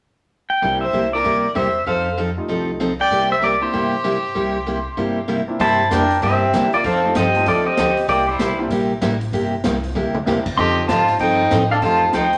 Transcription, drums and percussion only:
5.60 kick soft
5.60 open hi-hat soft
5.91 snare medium
5.91 closed hi-hat medium
6.11 open hi-hat soft
6.22 kick soft
6.22 open hi-hat soft
6.53 snare medium
6.53 closed hi-hat medium
6.73 open hi-hat soft
6.84 kick soft
6.84 open hi-hat soft
7.15 snare medium
7.15 closed hi-hat medium
7.35 open hi-hat soft
7.46 kick soft
7.46 open hi-hat soft
7.77 snare medium
7.77 closed hi-hat medium
7.97 open hi-hat soft
8.08 kick soft
8.08 open hi-hat medium
8.39 snare medium
8.39 closed hi-hat medium
8.70 kick soft
8.70 open hi-hat soft
9.02 snare medium
9.02 closed hi-hat medium
9.21 open hi-hat soft
9.33 kick soft
9.33 open hi-hat soft
9.64 snare medium
9.64 closed hi-hat soft
9.84 open hi-hat soft
9.95 mid tom soft
10.15 mid tom medium
10.26 snare medium
10.46 kick medium
10.46 crash medium
10.58 kick soft
10.89 snare medium
10.89 closed hi-hat soft
11.08 open hi-hat soft
11.19 kick soft
11.19 open hi-hat soft
11.51 snare medium
11.51 closed hi-hat medium
11.82 kick soft
11.82 open hi-hat soft
12.13 snare medium
12.13 closed hi-hat soft
12.33 open hi-hat soft

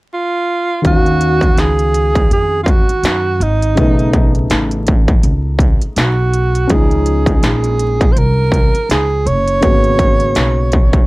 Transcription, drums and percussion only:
0.85 kick loud
0.85 closed hi-hat medium
1.06 closed hi-hat soft
1.21 closed hi-hat medium
1.41 kick medium
1.41 closed hi-hat soft
1.57 snare medium
1.57 closed hi-hat medium
1.79 closed hi-hat soft
1.94 closed hi-hat medium
2.15 kick medium
2.15 closed hi-hat medium
2.31 closed hi-hat medium
2.66 kick medium
2.66 closed hi-hat medium
2.89 closed hi-hat soft
3.04 snare loud
3.04 closed hi-hat medium
3.41 closed hi-hat medium
3.62 closed hi-hat soft
3.77 kick loud
3.77 closed hi-hat medium
3.99 closed hi-hat soft
4.13 kick medium
4.13 closed hi-hat medium
4.35 closed hi-hat soft
4.50 snare loud
4.50 closed hi-hat medium
4.71 closed hi-hat soft
4.87 kick medium
4.87 closed hi-hat medium
5.08 kick medium
5.08 closed hi-hat medium
5.23 closed hi-hat medium
5.59 kick medium
5.59 closed hi-hat medium
5.82 closed hi-hat soft
5.96 snare loud
5.96 closed hi-hat medium
6.34 closed hi-hat medium
6.55 closed hi-hat soft
6.69 kick loud
6.69 closed hi-hat medium
6.91 closed hi-hat soft
7.06 closed hi-hat medium
7.26 kick medium
7.26 closed hi-hat soft
7.43 snare medium
7.43 closed hi-hat medium
7.64 closed hi-hat soft
7.79 closed hi-hat medium
8.01 kick medium
8.01 closed hi-hat soft
8.17 closed hi-hat medium
8.52 kick medium
8.52 closed hi-hat medium
8.75 closed hi-hat medium
8.90 snare loud
8.90 closed hi-hat medium
9.27 closed hi-hat medium
9.48 closed hi-hat soft
9.63 kick loud
9.63 closed hi-hat medium
9.84 closed hi-hat soft
9.99 kick medium
9.99 closed hi-hat medium
10.20 closed hi-hat soft
10.35 snare loud
10.35 closed hi-hat medium
10.72 kick medium
10.72 closed hi-hat medium
10.93 kick medium
10.93 closed hi-hat medium

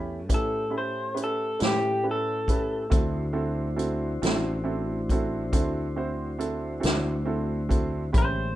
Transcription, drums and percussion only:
0.30 kick medium
0.30 closed hi-hat medium
1.17 closed hi-hat soft
1.60 snare medium
1.60 closed hi-hat medium
2.48 kick medium
2.48 closed hi-hat medium
2.92 kick loud
2.92 closed hi-hat medium
3.79 closed hi-hat soft
4.23 snare medium
4.23 closed hi-hat medium
5.09 kick medium
5.09 closed hi-hat soft
5.53 kick medium
5.53 closed hi-hat medium
6.40 closed hi-hat medium
6.83 snare medium
6.83 closed hi-hat medium
7.71 kick medium
7.71 closed hi-hat medium
8.14 kick loud
8.14 closed hi-hat medium

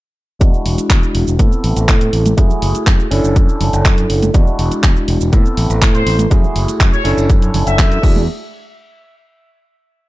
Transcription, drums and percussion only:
0.41 kick loud
0.41 closed hi-hat medium
0.41 shaker medium
0.54 shaker soft
0.66 open hi-hat loud
0.78 closed hi-hat soft
0.78 shaker medium
0.90 kick loud
0.90 clap loud
0.90 closed hi-hat medium
0.90 shaker medium
1.03 shaker soft
1.15 open hi-hat medium
1.27 shaker medium
1.39 kick loud
1.39 closed hi-hat medium
1.39 shaker medium
1.52 shaker soft
1.64 open hi-hat loud
1.64 tambourine medium
1.77 closed hi-hat soft
1.77 shaker medium
1.88 kick loud
1.88 clap loud
1.88 closed hi-hat medium
1.88 shaker medium
2.01 closed hi-hat medium
2.01 shaker soft
2.13 open hi-hat medium
2.13 tambourine loud
2.26 closed hi-hat medium
2.26 tambourine medium
2.26 high conga medium
2.26 shaker medium
2.38 kick loud
2.38 closed hi-hat medium
2.38 shaker medium
2.50 low conga medium
2.50 shaker soft
2.62 open hi-hat loud
2.62 tambourine medium
2.75 closed hi-hat soft
2.75 tambourine medium
2.75 shaker medium
2.87 kick loud
2.87 clap loud
2.87 closed hi-hat medium
2.87 shaker medium
3.00 shaker soft
3.11 open hi-hat loud
3.11 tambourine loud
3.24 shaker medium
3.36 kick loud
3.36 closed hi-hat medium
3.36 shaker medium
3.49 shaker soft
3.61 open hi-hat loud
3.61 tambourine loud
3.61 low conga medium
3.73 closed hi-hat soft
3.73 tambourine soft
3.73 shaker medium
3.85 kick loud
3.85 clap loud
3.85 closed hi-hat medium
3.85 shaker medium
3.98 closed hi-hat soft
3.98 shaker soft
4.10 open hi-hat loud
4.10 tambourine medium
4.22 closed hi-hat medium
4.22 tambourine medium
4.22 high conga medium
4.22 shaker medium
4.34 kick loud
4.34 closed hi-hat medium
4.34 tambourine soft
4.34 shaker medium
4.47 shaker soft
4.59 open hi-hat loud
4.59 tambourine medium
4.71 closed hi-hat soft
4.71 tambourine soft
4.71 shaker medium
4.83 kick loud
4.83 clap loud
4.83 closed hi-hat medium
4.83 shaker medium
4.96 shaker soft
5.08 open hi-hat loud
5.08 tambourine loud
5.21 tambourine medium
5.21 shaker medium
5.33 kick loud
5.33 closed hi-hat medium
5.33 shaker medium
5.46 shaker soft
5.57 open hi-hat loud
5.57 tambourine medium
5.70 closed hi-hat soft
5.70 tambourine soft
5.70 shaker medium
5.82 kick loud
5.82 clap loud
5.82 closed hi-hat medium
5.82 shaker medium
5.95 closed hi-hat soft
5.95 shaker soft
6.07 open hi-hat loud
6.07 tambourine medium
6.19 closed hi-hat medium
6.19 tambourine soft
6.19 high conga medium
6.19 shaker medium
6.31 kick loud
6.31 closed hi-hat medium
6.31 tambourine soft
6.31 shaker medium
6.43 low conga medium
6.43 shaker soft
6.56 open hi-hat loud
6.56 tambourine medium
6.68 closed hi-hat soft
6.68 tambourine soft
6.68 shaker medium
6.80 kick loud
6.80 clap loud
6.80 closed hi-hat medium
6.80 shaker medium
6.93 shaker soft
7.05 open hi-hat medium
7.05 tambourine medium
7.18 tambourine medium
7.18 shaker medium
7.30 kick loud
7.30 closed hi-hat medium
7.30 shaker medium
7.42 closed hi-hat soft
7.42 shaker soft
7.54 open hi-hat loud
7.54 tambourine medium
7.54 low conga medium
7.66 closed hi-hat soft
7.66 tambourine medium
7.66 shaker medium
7.79 kick loud
7.79 clap loud
7.79 closed hi-hat medium
7.79 shaker medium
7.92 closed hi-hat soft
7.92 shaker soft
8.03 kick loud
8.03 crash medium
8.03 tambourine medium
8.16 tambourine medium
8.16 high conga loud

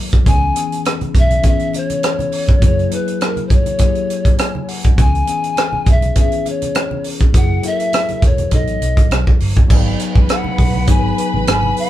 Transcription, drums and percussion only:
0.13 kick medium
0.13 cross-stick soft
0.13 closed hi-hat soft
0.13 low conga medium
0.26 kick medium
0.26 closed hi-hat medium
0.26 low conga medium
0.56 closed hi-hat medium
0.72 closed hi-hat soft
0.85 cross-stick medium
0.85 closed hi-hat medium
1.01 closed hi-hat soft
1.01 high conga medium
1.15 kick medium
1.15 closed hi-hat medium
1.15 low conga medium
1.30 closed hi-hat soft
1.30 high conga medium
1.43 kick medium
1.43 closed hi-hat medium
1.43 muted conga soft
1.59 closed hi-hat soft
1.73 closed hi-hat medium
1.73 muted conga soft
1.90 closed hi-hat soft
1.90 high conga soft
2.03 cross-stick loud
2.03 closed hi-hat medium
2.19 closed hi-hat soft
2.19 high conga medium
2.32 open hi-hat medium
2.32 muted conga soft
2.47 kick medium
2.47 cross-stick soft
2.47 closed hi-hat soft
2.47 low conga medium
2.62 kick loud
2.62 closed hi-hat medium
2.62 low conga medium
2.79 closed hi-hat soft
2.91 closed hi-hat medium
2.91 muted conga soft
3.08 closed hi-hat soft
3.21 cross-stick medium
3.21 closed hi-hat medium
3.36 closed hi-hat soft
3.36 high conga medium
3.50 kick medium
3.50 closed hi-hat medium
3.50 low conga medium
3.66 closed hi-hat soft
3.66 high conga medium
3.78 kick medium
3.78 closed hi-hat medium
3.78 muted conga soft
3.95 closed hi-hat soft
4.10 closed hi-hat medium
4.25 kick medium
4.25 closed hi-hat soft
4.25 high conga medium
4.38 cross-stick loud
4.38 closed hi-hat medium
4.55 high conga medium
4.68 open hi-hat medium
4.84 kick medium
4.84 closed hi-hat soft
4.84 low conga medium
4.98 kick loud
4.98 closed hi-hat medium
4.98 muted conga soft
4.98 low conga medium
5.15 closed hi-hat soft
5.27 closed hi-hat medium
5.27 muted conga soft
5.44 closed hi-hat soft
5.56 cross-stick loud
5.56 closed hi-hat medium
5.56 muted conga soft
5.73 high conga medium
5.86 kick medium
5.86 closed hi-hat medium
5.86 low conga medium
6.02 closed hi-hat soft
6.02 high conga medium
6.15 kick medium
6.15 closed hi-hat medium
6.32 closed hi-hat soft
6.46 closed hi-hat medium
6.46 muted conga soft
6.62 closed hi-hat medium
6.62 high conga medium
6.75 cross-stick loud
6.75 closed hi-hat medium
6.75 muted conga soft
6.91 high conga medium
7.04 open hi-hat medium
7.20 kick medium
7.20 cross-stick soft
7.20 closed hi-hat soft
7.20 low conga medium
7.34 kick loud
7.34 closed hi-hat medium
7.34 muted conga soft
7.34 low conga medium
7.63 closed hi-hat medium
7.63 muted conga soft
7.80 closed hi-hat soft
7.93 cross-stick loud
7.93 closed hi-hat medium
7.93 muted conga soft
8.08 closed hi-hat soft
8.08 high conga medium
8.22 kick medium
8.22 closed hi-hat medium
8.22 low conga medium
8.38 closed hi-hat soft
8.38 high conga medium
8.51 kick medium
8.51 closed hi-hat medium
8.67 closed hi-hat soft
8.82 closed hi-hat medium
8.82 muted conga soft
8.97 kick medium
8.97 closed hi-hat medium
8.97 high conga medium
9.11 cross-stick loud
9.11 closed hi-hat medium
9.27 kick medium
9.27 high conga medium
9.40 open hi-hat medium
9.56 kick medium
9.56 closed hi-hat soft
9.56 low conga medium
9.70 kick loud
9.70 crash medium
9.70 low conga medium
9.99 closed hi-hat medium
9.99 muted conga soft
10.15 kick medium
10.29 cross-stick medium
10.29 closed hi-hat medium
10.44 high conga medium
10.58 kick medium
10.58 open hi-hat soft
10.74 high conga medium
10.87 kick medium
10.87 closed hi-hat medium
11.18 closed hi-hat medium
11.34 high conga medium
11.47 cross-stick loud
11.47 closed hi-hat medium
11.63 high conga medium
11.77 open hi-hat medium

